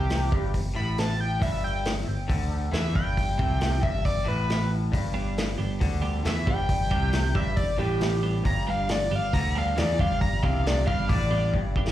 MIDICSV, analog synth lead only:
0, 0, Header, 1, 2, 480
1, 0, Start_track
1, 0, Key_signature, 1, "major"
1, 0, Tempo, 439883
1, 1547, Time_signature, 4, 2, 24, 8
1, 13006, End_track
2, 0, Start_track
2, 0, Title_t, "Analog synth lead"
2, 0, Program_c, 0, 81
2, 0, Note_on_c, 0, 67, 106
2, 559, Note_off_c, 0, 67, 0
2, 830, Note_on_c, 0, 83, 103
2, 1061, Note_off_c, 0, 83, 0
2, 1081, Note_on_c, 0, 81, 79
2, 1307, Note_off_c, 0, 81, 0
2, 1315, Note_on_c, 0, 79, 98
2, 1544, Note_off_c, 0, 79, 0
2, 1553, Note_on_c, 0, 76, 96
2, 1783, Note_off_c, 0, 76, 0
2, 1791, Note_on_c, 0, 79, 78
2, 2022, Note_off_c, 0, 79, 0
2, 2983, Note_on_c, 0, 76, 108
2, 3217, Note_off_c, 0, 76, 0
2, 3227, Note_on_c, 0, 79, 109
2, 4156, Note_off_c, 0, 79, 0
2, 4179, Note_on_c, 0, 76, 91
2, 4414, Note_off_c, 0, 76, 0
2, 4421, Note_on_c, 0, 74, 93
2, 4655, Note_off_c, 0, 74, 0
2, 4673, Note_on_c, 0, 71, 100
2, 5134, Note_off_c, 0, 71, 0
2, 6841, Note_on_c, 0, 76, 96
2, 7065, Note_off_c, 0, 76, 0
2, 7093, Note_on_c, 0, 79, 119
2, 8010, Note_off_c, 0, 79, 0
2, 8032, Note_on_c, 0, 76, 106
2, 8248, Note_off_c, 0, 76, 0
2, 8255, Note_on_c, 0, 74, 97
2, 8492, Note_off_c, 0, 74, 0
2, 8501, Note_on_c, 0, 67, 90
2, 8968, Note_off_c, 0, 67, 0
2, 9230, Note_on_c, 0, 82, 91
2, 9460, Note_off_c, 0, 82, 0
2, 9493, Note_on_c, 0, 77, 97
2, 9712, Note_off_c, 0, 77, 0
2, 9728, Note_on_c, 0, 74, 92
2, 9949, Note_off_c, 0, 74, 0
2, 9991, Note_on_c, 0, 77, 89
2, 10183, Note_off_c, 0, 77, 0
2, 10189, Note_on_c, 0, 82, 98
2, 10420, Note_off_c, 0, 82, 0
2, 10454, Note_on_c, 0, 77, 84
2, 10672, Note_off_c, 0, 77, 0
2, 10681, Note_on_c, 0, 74, 96
2, 10906, Note_off_c, 0, 74, 0
2, 10918, Note_on_c, 0, 77, 110
2, 11136, Note_off_c, 0, 77, 0
2, 11143, Note_on_c, 0, 82, 91
2, 11377, Note_off_c, 0, 82, 0
2, 11405, Note_on_c, 0, 77, 78
2, 11629, Note_off_c, 0, 77, 0
2, 11642, Note_on_c, 0, 74, 99
2, 11853, Note_off_c, 0, 74, 0
2, 11859, Note_on_c, 0, 77, 106
2, 12096, Note_off_c, 0, 77, 0
2, 12102, Note_on_c, 0, 74, 109
2, 12572, Note_off_c, 0, 74, 0
2, 13006, End_track
0, 0, End_of_file